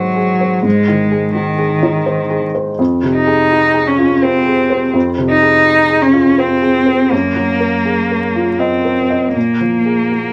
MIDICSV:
0, 0, Header, 1, 3, 480
1, 0, Start_track
1, 0, Tempo, 718563
1, 430, Time_signature, 3, 2, 24, 8
1, 4755, Tempo, 750000
1, 6809, End_track
2, 0, Start_track
2, 0, Title_t, "Felt piano"
2, 0, Program_c, 0, 0
2, 0, Control_c, 0, 64, 127
2, 0, Note_on_c, 0, 44, 39
2, 0, Note_on_c, 0, 51, 31
2, 0, Note_on_c, 0, 63, 34
2, 0, Note_on_c, 0, 66, 32
2, 0, Note_on_c, 0, 68, 36
2, 0, Note_on_c, 0, 72, 38
2, 108, Note_off_c, 0, 68, 0
2, 108, Note_on_c, 0, 68, 37
2, 206, Note_off_c, 0, 72, 0
2, 272, Note_on_c, 0, 72, 40
2, 364, Note_off_c, 0, 68, 0
2, 396, Note_off_c, 0, 44, 0
2, 420, Note_on_c, 0, 44, 41
2, 443, Control_c, 0, 64, 0
2, 448, Note_off_c, 0, 66, 0
2, 449, Note_off_c, 0, 51, 0
2, 450, Note_off_c, 0, 63, 0
2, 524, Note_off_c, 0, 72, 0
2, 541, Control_c, 0, 64, 127
2, 588, Note_on_c, 0, 51, 38
2, 745, Note_on_c, 0, 68, 39
2, 840, Note_off_c, 0, 51, 0
2, 899, Note_on_c, 0, 66, 35
2, 999, Note_off_c, 0, 68, 0
2, 1057, Note_on_c, 0, 68, 43
2, 1060, Note_off_c, 0, 66, 0
2, 1220, Note_on_c, 0, 63, 40
2, 1316, Note_off_c, 0, 68, 0
2, 1377, Note_on_c, 0, 72, 42
2, 1477, Note_off_c, 0, 63, 0
2, 1537, Note_on_c, 0, 68, 41
2, 1636, Note_off_c, 0, 72, 0
2, 1702, Note_on_c, 0, 72, 43
2, 1797, Note_off_c, 0, 68, 0
2, 1832, Note_off_c, 0, 44, 0
2, 1861, Note_on_c, 0, 41, 50
2, 1864, Note_off_c, 0, 72, 0
2, 1877, Control_c, 0, 64, 0
2, 1995, Control_c, 0, 64, 127
2, 2023, Note_on_c, 0, 48, 40
2, 2185, Note_on_c, 0, 68, 43
2, 2282, Note_off_c, 0, 48, 0
2, 2350, Note_on_c, 0, 66, 38
2, 2443, Note_off_c, 0, 68, 0
2, 2498, Note_on_c, 0, 68, 42
2, 2509, Note_off_c, 0, 66, 0
2, 2659, Note_on_c, 0, 65, 37
2, 2759, Note_off_c, 0, 68, 0
2, 2822, Note_on_c, 0, 72, 46
2, 2919, Note_off_c, 0, 65, 0
2, 2979, Note_on_c, 0, 68, 40
2, 3080, Note_off_c, 0, 72, 0
2, 3140, Note_on_c, 0, 72, 45
2, 3239, Note_off_c, 0, 68, 0
2, 3278, Note_off_c, 0, 41, 0
2, 3297, Note_on_c, 0, 41, 49
2, 3319, Control_c, 0, 64, 0
2, 3400, Note_off_c, 0, 72, 0
2, 3421, Control_c, 0, 64, 127
2, 3459, Note_on_c, 0, 48, 40
2, 3621, Note_on_c, 0, 68, 40
2, 3720, Note_off_c, 0, 48, 0
2, 3780, Note_on_c, 0, 66, 36
2, 3880, Note_off_c, 0, 68, 0
2, 3938, Note_on_c, 0, 68, 40
2, 3944, Note_off_c, 0, 66, 0
2, 4095, Note_on_c, 0, 65, 36
2, 4199, Note_off_c, 0, 68, 0
2, 4264, Note_on_c, 0, 72, 38
2, 4358, Note_off_c, 0, 65, 0
2, 4423, Note_on_c, 0, 68, 37
2, 4524, Note_off_c, 0, 72, 0
2, 4582, Note_on_c, 0, 72, 41
2, 4685, Note_off_c, 0, 68, 0
2, 4722, Note_off_c, 0, 41, 0
2, 4749, Note_off_c, 0, 72, 0
2, 4753, Note_on_c, 0, 42, 45
2, 4765, Control_c, 0, 64, 0
2, 4861, Control_c, 0, 64, 127
2, 4906, Note_on_c, 0, 54, 35
2, 5066, Note_on_c, 0, 70, 36
2, 5159, Note_off_c, 0, 54, 0
2, 5226, Note_on_c, 0, 68, 31
2, 5318, Note_off_c, 0, 70, 0
2, 5383, Note_off_c, 0, 68, 0
2, 5392, Note_on_c, 0, 70, 34
2, 5546, Note_on_c, 0, 65, 30
2, 5642, Note_off_c, 0, 70, 0
2, 5702, Note_on_c, 0, 75, 35
2, 5799, Note_off_c, 0, 65, 0
2, 5862, Note_on_c, 0, 70, 31
2, 5958, Note_off_c, 0, 75, 0
2, 6025, Note_on_c, 0, 75, 30
2, 6119, Note_off_c, 0, 70, 0
2, 6158, Note_off_c, 0, 42, 0
2, 6185, Note_off_c, 0, 75, 0
2, 6185, Note_on_c, 0, 46, 30
2, 6197, Control_c, 0, 64, 0
2, 6292, Control_c, 0, 64, 127
2, 6347, Note_on_c, 0, 53, 27
2, 6507, Note_on_c, 0, 68, 30
2, 6607, Note_off_c, 0, 53, 0
2, 6673, Note_on_c, 0, 66, 24
2, 6769, Note_off_c, 0, 68, 0
2, 6809, Note_off_c, 0, 46, 0
2, 6809, Note_off_c, 0, 66, 0
2, 6809, End_track
3, 0, Start_track
3, 0, Title_t, "Cello"
3, 0, Program_c, 1, 42
3, 0, Note_on_c, 1, 54, 66
3, 428, Note_off_c, 1, 54, 0
3, 432, Note_on_c, 1, 56, 68
3, 895, Note_off_c, 1, 56, 0
3, 907, Note_on_c, 1, 51, 59
3, 1610, Note_off_c, 1, 51, 0
3, 2109, Note_on_c, 1, 63, 67
3, 2589, Note_on_c, 1, 61, 55
3, 2599, Note_off_c, 1, 63, 0
3, 2826, Note_on_c, 1, 60, 62
3, 2836, Note_off_c, 1, 61, 0
3, 3306, Note_off_c, 1, 60, 0
3, 3543, Note_on_c, 1, 63, 79
3, 4025, Note_on_c, 1, 61, 64
3, 4035, Note_off_c, 1, 63, 0
3, 4270, Note_on_c, 1, 60, 68
3, 4280, Note_off_c, 1, 61, 0
3, 4752, Note_on_c, 1, 58, 64
3, 4762, Note_off_c, 1, 60, 0
3, 5699, Note_on_c, 1, 60, 53
3, 5708, Note_off_c, 1, 58, 0
3, 6181, Note_off_c, 1, 60, 0
3, 6185, Note_on_c, 1, 58, 49
3, 6809, Note_off_c, 1, 58, 0
3, 6809, End_track
0, 0, End_of_file